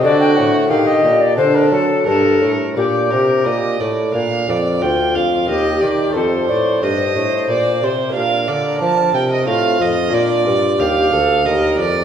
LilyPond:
<<
  \new Staff \with { instrumentName = "Violin" } { \time 3/4 \key g \minor \tempo 4 = 90 fis'4 g'4 a'4 | bes'4 d''8 bes'8 ees''8 d''8 | \key bes \major f''8 d''8 g''8 f''8 ees''8 d''8 | c''4 ees''4 d''8 c''8 |
f''8 d''8 a''8 g''16 ees''16 f''8 ees''8 | d''4 f''4 ees''8 d''8 | }
  \new Staff \with { instrumentName = "Recorder" } { \time 3/4 \key g \minor d''16 g''16 fis''8 f''16 ees''8 d''16 c''16 bes'16 a'8 | a'8. r16 g'4. r8 | \key bes \major r4 f'4 g'4 | a'8 d''8 c''2 |
bes'2 f'4~ | f'4 g'8 a'8 bes'8 r8 | }
  \new Staff \with { instrumentName = "Lute" } { \time 3/4 \key g \minor <c' a'>4 <bes g'>4 <c' d'>4 | <bes d'>2. | \key bes \major <bes d'>2 <bes g'>4 | <a ees' f'>2. |
<bes d' f'>2 <c' ees' f'>4 | <bes d' f'>2. | }
  \new Staff \with { instrumentName = "Lute" } { \clef bass \time 3/4 \key g \minor d8 a,8 ees8 bes,8 d8 fis8 | g,8 a,8 bes,8 c8 bes,8 a,8 | \key bes \major bes,8 f,8 d,8 f,8 ees,8 ees8 | f,8 a,8 g,8 a,8 bes,8 c8 |
bes,8 d8 f8 c8 a,8 f,8 | bes,8 g,8 ees,8 d,8 ees,8 f,8 | }
  \new Staff \with { instrumentName = "Bassoon" } { \clef bass \time 3/4 \key g \minor d8 a,8 ees8 bes,8 d8 fis8 | g,8 a,8 bes,8 c8 bes,8 a,8 | \key bes \major bes,8 f,8 d,8 f,8 ees,8 ees8 | f,8 a,8 g,8 a,8 bes,8 c8 |
bes,8 d8 f8 c8 a,8 f,8 | bes,8 g,8 ees,8 d,8 ees,8 f,8 | }
>>